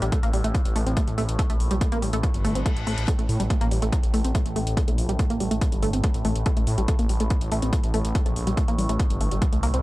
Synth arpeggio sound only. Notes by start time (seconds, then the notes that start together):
0.02 G3
0.12 A3
0.23 A#3
0.34 G3
0.44 A3
0.76 A3
0.86 C4
0.97 A3
1.18 A3
1.39 A3
1.50 A3
1.71 G3
1.81 A3
1.92 A#3
2.02 G3
2.13 A3
2.45 A3
2.55 C4
2.66 A3
2.87 A3
3.08 A3
3.19 A3
3.40 G3
3.50 A3
3.61 A#3
3.71 G3
3.82 A3
4.14 A3
4.25 C4
4.35 A3
4.56 A3
4.77 A3
4.88 A3
5.09 G3
5.19 A3
5.30 A#3
5.40 G3
5.51 A3
5.83 A3
5.93 C4
6.04 A3
6.25 A3
6.46 A3
6.57 A3
6.78 G3
6.88 A3
6.99 A#3
7.10 G3
7.20 A3
7.52 A3
7.63 C4
7.73 A3
7.94 A3
8.15 A3
8.26 A3
8.47 G3
8.57 A3
8.68 A#3
8.79 G3
8.89 A3
9.21 A3
9.32 G3
9.42 G3
9.53 A3
9.63 A#3
9.74 C4